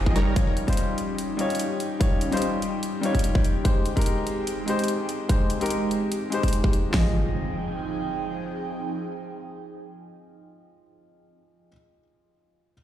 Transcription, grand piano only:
0.00 0.18 F3 medium
0.00 0.18 F4 medium
0.00 0.18 G#4 medium
0.00 0.17 C5 medium
0.00 0.18 D#5 medium
0.35 0.65 G3 medium
0.35 0.65 D#4 medium
0.35 0.65 F4 medium
0.35 0.66 C#5 medium
0.67 0.75 G3 medium
0.67 0.76 D#4 medium
0.67 0.76 F4 medium
0.67 0.76 C5 medium
1.37 1.97 G3 medium
1.37 1.98 D#4 medium
1.37 1.99 F4 medium
1.41 1.99 C#5 medium
2.00 2.29 G3 medium
2.00 2.30 D#4 medium
2.00 2.30 F4 medium
2.00 2.30 C#5 medium
2.31 2.40 G3 medium
2.31 2.40 D#4 medium
2.31 2.41 F4 medium
2.31 2.41 C5 medium
3.01 3.62 G3 medium
3.01 3.62 D#4 medium
3.01 3.63 F4 medium
3.05 3.64 C#5 medium
3.64 3.94 G#3 medium
3.64 3.94 D#4 medium
3.64 3.94 G4 medium
3.64 3.95 C5 medium
3.96 4.04 G#3 medium
3.96 4.05 D#4 medium
3.96 4.05 G4 medium
3.96 4.05 A#4 loud
4.66 5.26 G#3 medium
4.66 5.27 D#4 medium
4.66 5.27 G4 medium
4.70 5.28 C5 medium
5.28 5.58 G#3 medium
5.28 5.58 D#4 medium
5.28 5.59 G4 medium
5.28 5.59 C5 medium
5.60 5.69 G#3 medium
5.60 5.69 D#4 medium
5.60 5.69 G4 medium
5.60 5.70 A#4 medium
6.30 6.91 G#3 medium
6.30 6.91 D#4 medium
6.30 6.92 G4 medium
6.34 6.93 C5 medium
6.91 11.67 F3 medium
6.91 11.68 F4 medium
6.91 11.69 G#4 medium
6.97 11.70 D#5 medium

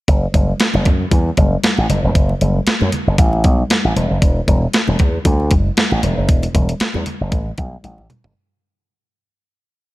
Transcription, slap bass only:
0.08 0.26 F#1 medium
0.34 0.52 F#1 medium
0.74 0.88 F#1 loud
0.86 1.04 F#2 medium
1.11 1.29 E2 loud
1.38 1.55 F#1 medium
1.78 1.86 A1 medium
1.89 1.99 F#1 medium
2.04 2.12 E1 medium
2.15 2.33 F#1 loud
2.41 2.59 F#1 medium
2.67 muted slap bass stroke soft
2.81 2.89 F#2 loud
3.07 3.15 F#1 medium
3.18 3.44 A1 loud
3.44 3.62 B1 medium
3.85 3.92 A1 medium
3.96 4.06 E1 medium
4.11 4.18 F#1 medium
4.22 4.40 E1 medium
4.48 4.65 E1 medium
4.88 4.96 E1 loud
5.00 5.17 E2 loud
5.25 5.53 D2 loud
5.51 5.69 F#1 medium
5.92 5.99 A1 medium
6.03 6.13 E1 medium
6.17 6.29 F#1 medium
6.29 6.46 E1 loud
6.55 6.72 E1 medium
6.80 muted slap bass stroke soft
6.95 7.03 E2 medium
7.21 7.32 F#1 medium
7.32 7.50 A1 medium
7.58 7.76 B1 loud
7.84 7.94 A1 medium
7.99 8.06 A1 medium
8.24 8.32 F#1 medium

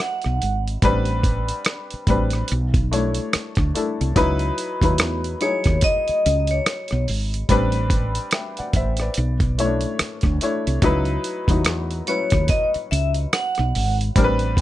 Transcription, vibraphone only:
0.00 0.62 F#5 medium
5.42 5.80 C#5 medium
5.84 6.51 D#5 medium
6.51 7.04 C#5 medium
12.08 12.46 C#5 medium
12.50 12.68 D#5 medium
12.91 13.10 E5 medium
13.33 13.95 F#5 medium

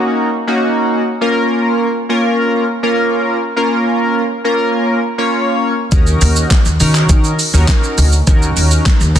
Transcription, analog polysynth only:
0.00 0.29 A#3 medium
0.00 0.29 C#4 medium
0.00 0.29 D#4 medium
0.00 0.29 F#4 loud
0.47 1.02 A#3 medium
0.47 1.02 C#4 medium
0.47 1.02 D#4 medium
0.47 1.02 F#4 loud
1.21 1.87 A#3 medium
1.21 1.87 C#4 medium
1.21 1.87 F4 medium
1.21 1.87 A#4 loud
2.09 2.64 A#3 medium
2.09 2.64 C#4 medium
2.09 2.64 F4 medium
2.09 2.64 A#4 loud
2.83 3.37 A#3 medium
2.83 3.38 C#4 medium
2.83 3.38 F4 medium
2.83 3.38 A#4 loud
3.56 4.22 A#3 medium
3.56 4.22 C#4 medium
3.56 4.22 F4 medium
3.56 4.22 A#4 loud
4.44 4.99 A#3 medium
4.44 4.99 C#4 medium
4.44 4.99 F4 medium
4.44 4.99 A#4 loud
5.18 5.73 A#3 medium
5.18 5.73 C#4 medium
5.18 5.73 F4 medium
5.18 5.73 C#5 loud
5.92 6.57 C#4 medium
5.92 6.57 D#4 medium
5.92 6.57 F#4 medium
5.92 6.57 A#4 loud
6.80 7.35 C#4 medium
6.80 7.35 D#4 medium
6.80 7.35 F#4 medium
6.80 7.35 A#4 loud
7.54 8.08 C#4 medium
7.54 8.08 D#4 medium
7.54 8.08 F#4 medium
7.54 8.09 A#4 loud
8.27 8.93 C#4 medium
8.27 8.93 D#4 medium
8.27 8.93 F#4 medium
8.27 8.93 A#4 loud
9.15 9.19 C#4 medium
9.15 9.19 D#4 medium
9.15 9.19 F#4 medium
9.15 9.19 A#4 loud

